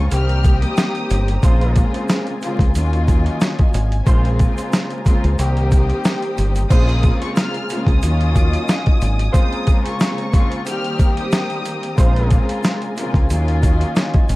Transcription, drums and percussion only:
0.11 closed hi-hat, shaker
0.29 closed hi-hat
0.44 kick, closed hi-hat, shaker
0.62 closed hi-hat
0.77 snare, closed hi-hat, shaker
0.95 closed hi-hat
1.10 closed hi-hat, shaker
1.28 closed hi-hat
1.43 kick, closed hi-hat, shaker
1.61 closed hi-hat
1.76 kick, closed hi-hat, shaker
1.94 closed hi-hat
2.09 snare, closed hi-hat, shaker
2.27 closed hi-hat
2.42 closed hi-hat, shaker
2.59 kick, closed hi-hat
2.75 closed hi-hat, shaker
2.93 closed hi-hat
3.08 kick, closed hi-hat, shaker
3.26 closed hi-hat
3.41 snare, closed hi-hat, shaker
3.59 kick, closed hi-hat
3.74 closed hi-hat, shaker
3.92 closed hi-hat
4.07 kick, closed hi-hat, shaker
4.25 closed hi-hat
4.39 kick, closed hi-hat, shaker
4.58 closed hi-hat, shaker
4.73 snare, closed hi-hat, shaker
4.90 closed hi-hat
5.06 kick, closed hi-hat, shaker
5.24 closed hi-hat
5.39 closed hi-hat, shaker
5.57 closed hi-hat
5.72 kick, closed hi-hat, shaker
5.90 closed hi-hat
6.04 snare, closed hi-hat, shaker
6.22 closed hi-hat
6.38 closed hi-hat, shaker
6.55 closed hi-hat, shaker
6.70 kick, closed hi-hat, crash, shaker
6.89 closed hi-hat
7.03 kick, closed hi-hat, shaker
7.22 closed hi-hat
7.36 snare, closed hi-hat, shaker
7.54 closed hi-hat
7.69 closed hi-hat, shaker
7.87 kick, closed hi-hat
8.03 closed hi-hat, shaker
8.21 closed hi-hat
8.35 kick, closed hi-hat, shaker
8.53 closed hi-hat
8.68 snare, closed hi-hat, shaker
8.86 kick, closed hi-hat
9.01 closed hi-hat, shaker
9.19 closed hi-hat
9.34 kick, closed hi-hat, shaker
9.53 closed hi-hat
9.67 kick, closed hi-hat, shaker
9.86 closed hi-hat
10.00 snare, closed hi-hat, shaker
10.18 closed hi-hat
10.33 kick, closed hi-hat, shaker
10.52 closed hi-hat
10.66 closed hi-hat, shaker
10.84 closed hi-hat
10.99 kick, closed hi-hat, shaker
11.17 closed hi-hat
11.32 snare, closed hi-hat, shaker
11.50 closed hi-hat
11.65 closed hi-hat, shaker
11.83 closed hi-hat
11.98 kick, closed hi-hat, shaker
12.16 closed hi-hat
12.30 kick, closed hi-hat, shaker
12.49 closed hi-hat
12.64 snare, closed hi-hat, shaker
12.82 closed hi-hat
12.97 closed hi-hat, shaker
13.14 kick, closed hi-hat
13.30 closed hi-hat, shaker
13.48 closed hi-hat
13.63 kick, closed hi-hat, shaker
13.81 closed hi-hat
13.96 snare, closed hi-hat, shaker
14.14 kick, closed hi-hat
14.29 closed hi-hat, shaker

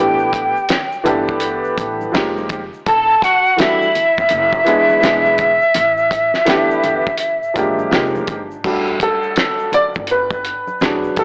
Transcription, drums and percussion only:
0.19 shaker
0.33 kick, closed hi-hat, high conga, shaker
0.57 shaker
0.69 snare, closed hi-hat, low conga, shaker
0.92 shaker
1.06 closed hi-hat, low conga, shaker
1.28 kick, shaker
1.40 closed hi-hat, shaker
1.64 shaker
1.78 kick, closed hi-hat, shaker
2.01 high conga, shaker
2.14 snare, closed hi-hat, shaker
2.37 high conga, shaker
2.49 kick, closed hi-hat, low conga, shaker
2.73 shaker
2.86 kick, closed hi-hat, shaker
3.10 shaker
3.22 kick, closed hi-hat, high conga, shaker
3.46 shaker
3.58 snare, closed hi-hat, low conga, shaker
3.82 shaker
3.95 closed hi-hat, low conga, shaker
4.17 kick, shaker
4.29 closed hi-hat, shaker
4.53 kick, shaker
4.67 closed hi-hat, shaker
4.89 high conga, shaker
5.02 snare, closed hi-hat, shaker
5.25 high conga, shaker
5.38 kick, closed hi-hat, low conga, shaker
5.61 shaker
5.74 closed hi-hat, shaker
5.97 shaker
6.11 kick, closed hi-hat, high conga, shaker
6.34 snare, shaker
6.46 snare, closed hi-hat, high conga, low conga, shaker
6.71 shaker
6.84 closed hi-hat, high conga, low conga, shaker
7.06 kick, shaker
7.18 closed hi-hat, shaker
7.43 shaker
7.56 kick, closed hi-hat, shaker
7.79 high conga, shaker
7.93 snare, closed hi-hat, shaker
8.15 high conga, shaker
8.27 kick, closed hi-hat, low conga, shaker
8.51 shaker
8.64 kick, crash, shaker
8.87 shaker
9.00 kick, closed hi-hat, high conga, shaker
9.23 shaker
9.36 snare, closed hi-hat, high conga, low conga, shaker
9.59 shaker
9.72 closed hi-hat, high conga, low conga, shaker
9.95 kick, shaker
10.07 closed hi-hat, shaker
10.30 kick, shaker
10.44 closed hi-hat, shaker
10.67 high conga, shaker
10.81 snare, closed hi-hat, shaker
11.04 shaker
11.16 kick, closed hi-hat, low conga, shaker

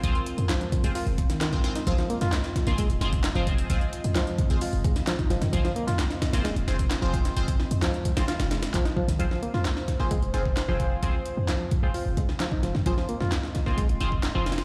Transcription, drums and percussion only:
0.04 kick, closed hi-hat
0.15 closed hi-hat
0.26 closed hi-hat
0.38 closed hi-hat
0.49 snare, clap, closed hi-hat
0.61 closed hi-hat
0.72 kick, closed hi-hat
0.84 closed hi-hat
0.95 closed hi-hat, open hi-hat
1.07 closed hi-hat
1.18 kick, closed hi-hat
1.30 snare, closed hi-hat
1.41 snare, clap, closed hi-hat
1.53 kick, closed hi-hat
1.64 snare, closed hi-hat
1.75 snare, closed hi-hat
1.87 kick, closed hi-hat
1.98 snare, closed hi-hat
2.10 closed hi-hat
2.21 snare, closed hi-hat
2.32 snare, clap, closed hi-hat
2.44 snare, closed hi-hat
2.56 snare, closed hi-hat
2.67 snare, closed hi-hat
2.78 kick, closed hi-hat
2.90 closed hi-hat
3.01 snare, closed hi-hat
3.13 kick, closed hi-hat
3.24 snare, clap, closed hi-hat
3.35 closed hi-hat
3.47 kick, closed hi-hat
3.58 closed hi-hat
3.70 kick, closed hi-hat
3.81 closed hi-hat
3.93 closed hi-hat
4.04 closed hi-hat
4.16 snare, clap, closed hi-hat
4.27 closed hi-hat
4.38 kick, closed hi-hat
4.50 closed hi-hat
4.61 closed hi-hat, open hi-hat
4.73 closed hi-hat
4.84 kick, closed hi-hat
4.96 snare, closed hi-hat
5.07 snare, clap, closed hi-hat
5.19 kick, closed hi-hat
5.30 snare, closed hi-hat
5.42 snare, closed hi-hat
5.53 kick, closed hi-hat
5.65 snare, closed hi-hat
5.76 closed hi-hat
5.88 snare, closed hi-hat
5.99 snare, clap, closed hi-hat
6.10 snare, closed hi-hat
6.22 snare, closed hi-hat
6.33 snare, closed hi-hat
6.45 snare, closed hi-hat
6.56 closed hi-hat
6.68 snare, closed hi-hat
6.79 kick, closed hi-hat
6.91 snare, clap, closed hi-hat
7.02 closed hi-hat
7.14 kick, closed hi-hat
7.25 snare, closed hi-hat
7.36 closed hi-hat
7.48 kick, closed hi-hat
7.60 snare
7.71 closed hi-hat
7.82 snare, clap, closed hi-hat
7.94 closed hi-hat
8.05 closed hi-hat
8.17 snare, closed hi-hat
8.28 snare, closed hi-hat
8.40 snare, closed hi-hat
8.51 snare, closed hi-hat
8.63 snare, closed hi-hat
8.74 kick, clap, closed hi-hat
8.85 snare, closed hi-hat
8.97 kick
9.08 snare, closed hi-hat
9.20 kick, closed hi-hat
9.31 snare
9.43 closed hi-hat
9.54 snare
9.65 snare, clap, closed hi-hat
9.77 snare
9.88 snare, closed hi-hat
10.00 snare
10.11 kick, closed hi-hat
10.22 closed hi-hat
10.34 snare, closed hi-hat
10.46 kick
10.57 snare, clap, closed hi-hat
10.80 kick, closed hi-hat
11.03 kick, closed hi-hat
11.26 closed hi-hat
11.48 snare, clap, closed hi-hat
11.71 kick, closed hi-hat
11.94 open hi-hat
12.17 kick, closed hi-hat
12.29 snare
12.40 snare, clap, closed hi-hat
12.52 kick
12.63 snare, closed hi-hat
12.75 snare
12.86 kick, closed hi-hat
12.98 snare
13.09 closed hi-hat
13.21 snare
13.32 snare, clap, closed hi-hat
13.43 snare
13.55 snare, closed hi-hat
13.66 snare
13.78 kick, closed hi-hat
13.89 closed hi-hat
14.00 snare, closed hi-hat
14.12 kick
14.23 snare, clap, closed hi-hat
14.46 snare, closed hi-hat
14.52 snare, closed hi-hat
14.58 snare, closed hi-hat

